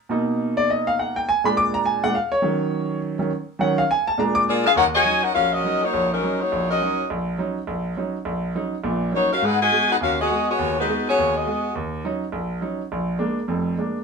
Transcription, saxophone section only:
4.49 4.65 A#3 medium
4.49 4.65 F4 medium
4.49 4.65 G#4 medium
4.49 4.65 D5 loud
4.66 4.71 D4 loud
4.66 4.71 G#4 loud
4.66 4.71 A#4 loud
4.66 4.71 F5 loud
4.77 4.85 D#4 loud
4.77 4.85 A#4 loud
4.77 4.85 C#5 loud
4.77 4.85 F#5 loud
4.95 5.22 F#4 loud
4.95 5.22 C#5 medium
4.95 5.22 D#5 medium
4.95 5.22 G#5 loud
5.23 5.35 D#4 medium
5.23 5.34 A#4 medium
5.23 5.35 C#5 medium
5.23 5.35 F#5 loud
5.34 5.51 C#4 medium
5.34 5.51 F#4 loud
5.34 5.51 A#4 medium
5.34 5.51 F5 loud
5.53 5.82 C#4 medium
5.53 5.82 F#4 medium
5.53 5.82 A#4 medium
5.53 5.82 D#5 loud
5.83 6.11 A#3 loud
5.83 6.12 D#4 loud
5.83 6.11 F#4 loud
5.83 6.12 C#5 loud
6.12 6.39 F#3 medium
6.12 6.39 C#4 medium
6.12 6.39 D#4 medium
6.12 6.39 A#4 medium
6.41 6.70 A#3 medium
6.41 6.70 D#4 medium
6.41 6.70 F#4 medium
6.41 6.70 C#5 loud
6.71 7.08 C#4 medium
6.71 7.08 F#4 medium
6.71 7.08 A#4 medium
6.71 7.08 D#5 medium
9.15 9.31 A#3 medium
9.15 9.31 D#4 medium
9.15 9.31 F#4 medium
9.15 9.31 C#5 loud
9.32 9.42 C#4 medium
9.32 9.42 F#4 medium
9.32 9.42 A#4 loud
9.32 9.42 F5 loud
9.45 9.61 D#4 loud
9.45 9.61 G#4 loud
9.45 9.60 B4 loud
9.45 9.61 F#5 loud
9.61 9.88 F#4 medium
9.61 9.88 B4 loud
9.61 9.88 D#5 medium
9.61 9.88 G#5 loud
9.91 9.96 D#4 medium
9.91 9.96 G#4 medium
9.91 9.96 B4 medium
9.91 9.96 F#5 loud
10.03 10.18 C#4 medium
10.03 10.18 F#4 medium
10.03 10.18 A#4 medium
10.03 10.18 F5 loud
10.21 10.47 B3 medium
10.21 10.47 F#4 medium
10.21 10.47 G#4 medium
10.21 10.47 D#5 loud
10.50 10.78 B3 loud
10.50 10.78 F#4 medium
10.50 10.78 G#4 loud
10.50 10.78 C#5 loud
10.79 11.05 G#3 medium
10.79 11.05 D#4 medium
10.79 11.05 F#4 medium
10.79 11.05 B4 medium
11.09 11.35 B3 medium
11.09 11.35 F#4 medium
11.09 11.34 G#4 medium
11.09 11.34 C#5 medium
11.36 11.76 B3 medium
11.36 11.76 F#4 medium
11.36 11.76 G#4 medium
11.36 11.76 D#5 medium

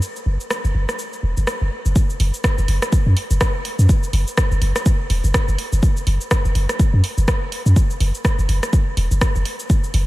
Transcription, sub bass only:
0.26 0.37 F#1 loud
0.64 0.72 F#1 medium
0.75 0.85 F#1 medium
1.23 1.34 E1 medium
1.37 1.45 F#1 loud
1.61 1.69 F#1 medium
1.86 1.93 F#1 medium
2.20 2.31 F#1 loud
2.58 2.66 F#1 loud
2.68 2.79 F#1 medium
3.06 3.14 F#2 medium
3.31 3.38 F#1 loud
3.79 3.87 F#2 medium
4.13 4.24 F#1 loud
4.51 4.59 F#1 loud
4.61 4.72 F#1 medium
5.10 5.21 E1 medium
5.24 5.32 F#1 loud
5.48 5.56 F#1 medium
5.73 5.80 F#1 medium
6.07 6.18 F#1 loud
6.45 6.53 F#1 loud
6.55 6.66 F#1 loud
6.94 7.01 F#2 medium
7.18 7.25 F#1 loud
7.66 7.74 F#2 medium
8.00 8.11 F#1 loud
8.39 8.46 F#1 loud
8.49 8.60 F#1 loud
8.97 9.08 E1 medium
9.11 9.19 F#1 loud
9.36 9.43 F#1 medium
9.94 10.05 F#1 loud

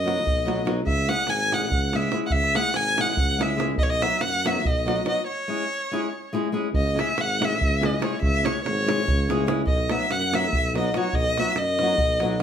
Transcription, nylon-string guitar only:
0.04 0.19 F#3 medium
0.04 0.19 B3 soft
0.04 0.19 D#4 soft
0.04 0.20 F#4 medium
0.45 0.60 F#3 medium
0.45 0.60 B3 medium
0.45 0.60 D#4 medium
0.45 0.60 F#4 medium
0.65 0.79 F#3 medium
0.65 0.79 B3 medium
0.65 0.80 D#4 medium
0.65 0.80 F#4 medium
1.09 1.23 G#3 medium
1.09 1.23 C#4 soft
1.09 1.23 E4 soft
1.09 1.24 G#4 medium
1.51 1.66 G#3 medium
1.51 1.66 C#4 soft
1.51 1.66 E4 soft
1.51 1.67 G#4 medium
1.94 2.07 G#3 medium
1.94 2.08 C#4 medium
1.94 2.08 E4 soft
1.94 2.08 G#4 medium
2.13 2.26 G#3 medium
2.13 2.27 C#4 soft
2.13 2.27 E4 soft
2.13 2.27 G#4 medium
2.55 2.69 G#3 medium
2.55 2.70 C#4 medium
2.55 2.70 E4 medium
2.55 2.70 G#4 medium
2.98 3.12 G#3 medium
2.98 3.13 C#4 medium
2.98 3.13 E4 soft
2.98 3.13 G#4 medium
3.38 3.53 G#3 medium
3.38 3.53 C#4 medium
3.38 3.53 E4 medium
3.38 3.54 G#4 medium
3.56 3.72 G#3 medium
3.56 3.72 C#4 soft
3.56 3.72 E4 medium
3.56 3.72 G#4 medium
4.00 4.15 F#3 medium
4.00 4.15 B3 soft
4.00 4.16 D#4 soft
4.00 4.16 F#4 medium
4.45 4.59 F#3 medium
4.45 4.60 B3 medium
4.45 4.60 D#4 soft
4.45 4.60 F#4 medium
4.85 5.00 F#3 medium
4.85 5.00 B3 medium
4.85 5.01 D#4 soft
4.85 5.01 F#4 medium
5.05 5.19 F#3 medium
5.05 5.19 B3 medium
5.05 5.20 D#4 soft
5.05 5.20 F#4 medium
5.48 5.63 G#3 medium
5.48 5.63 C#4 medium
5.48 5.63 E4 medium
5.48 5.63 G#4 medium
5.91 6.06 G#3 medium
5.91 6.07 C#4 medium
5.91 6.07 E4 medium
5.91 6.07 G#4 medium
6.33 6.47 G#3 medium
6.33 6.47 C#4 medium
6.33 6.47 E4 medium
6.33 6.48 G#4 medium
6.52 6.66 G#3 medium
6.52 6.67 C#4 medium
6.52 6.67 E4 medium
6.52 6.67 G#4 medium
6.95 7.09 G#3 medium
6.95 7.10 C#4 medium
6.95 7.10 E4 medium
6.95 7.11 G#4 medium
7.40 7.54 G#3 medium
7.40 7.54 C#4 soft
7.40 7.55 E4 medium
7.40 7.55 G#4 medium
7.81 7.95 G#3 medium
7.81 7.95 C#4 medium
7.81 7.95 E4 medium
7.81 7.95 G#4 medium
7.99 8.13 G#3 medium
7.99 8.14 C#4 soft
7.99 8.14 E4 medium
7.99 8.15 G#4 medium
8.43 8.57 G#3 medium
8.43 8.57 C#4 medium
8.43 8.57 E4 medium
8.43 8.58 G#4 medium
8.86 9.00 G#3 medium
8.86 9.01 C#4 medium
8.86 9.01 E4 medium
8.86 9.01 G#4 medium
9.29 9.42 G#3 medium
9.29 9.42 C#4 medium
9.29 9.42 E4 medium
9.29 9.43 G#4 medium
9.47 9.61 G#3 medium
9.47 9.61 C#4 medium
9.47 9.61 E4 medium
9.47 9.61 G#4 medium
9.90 10.04 F#3 medium
9.90 10.04 B3 medium
9.90 10.05 D#4 medium
9.90 10.05 F#4 medium
10.32 10.46 F#3 medium
10.32 10.47 B3 medium
10.32 10.47 D#4 medium
10.32 10.47 F#4 medium
10.74 10.88 F#3 medium
10.74 10.88 B3 medium
10.74 10.89 D#4 medium
10.74 10.89 F#4 medium
10.95 11.08 F#3 medium
10.95 11.08 B3 medium
10.95 11.08 D#4 medium
10.95 11.09 F#4 medium
11.37 11.51 F#3 medium
11.37 11.51 B3 medium
11.37 11.51 D#4 soft
11.37 11.52 F#4 medium
11.81 11.94 F#3 medium
11.81 11.94 B3 medium
11.81 11.95 D#4 medium
11.81 11.95 F#4 medium
12.20 12.34 F#3 medium
12.20 12.35 B3 medium
12.20 12.35 D#4 medium
12.20 12.35 F#4 medium
12.39 12.43 F#3 medium
12.39 12.43 B3 medium

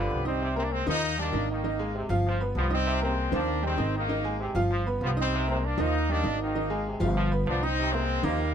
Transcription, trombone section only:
0.00 0.19 D3 medium
0.41 0.65 C3 medium
0.87 1.03 F3 medium
1.18 1.34 D#3 medium
1.49 1.73 D#3 medium
1.94 2.10 C3 medium
2.26 2.42 F3 medium
2.56 2.72 F3 loud
2.86 3.10 C3 loud
3.32 3.48 F3 medium
3.63 3.79 D#3 medium
3.94 4.18 D#3 medium
4.40 4.56 C3 medium
4.71 4.87 F3 medium
5.01 5.17 F3 medium
5.32 5.56 C3 loud
5.78 5.94 F3 medium
6.09 6.25 D#3 medium
6.40 6.64 D#3 medium
6.85 7.01 C3 medium
7.16 7.32 F3 loud
7.46 7.62 F3 loud
7.78 8.02 C3 medium
8.23 8.39 F3 medium

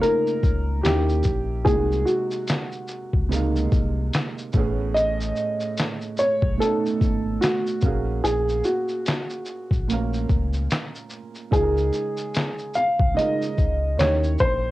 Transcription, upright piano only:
0.02 0.86 A#4 medium
0.83 1.68 G4 medium
1.65 2.08 G#4 medium
2.05 3.67 F#4 medium
4.94 5.73 D#5 loud
6.19 6.61 C#5 loud
6.60 7.45 A4 medium
7.41 8.20 F#4 medium
8.24 8.66 G#4 medium
8.65 10.25 F#4 medium
11.53 12.80 G#4 medium
12.75 13.18 F5 medium
13.17 14.02 D#5 loud
13.99 14.42 C#5 medium
14.40 14.71 C5 loud

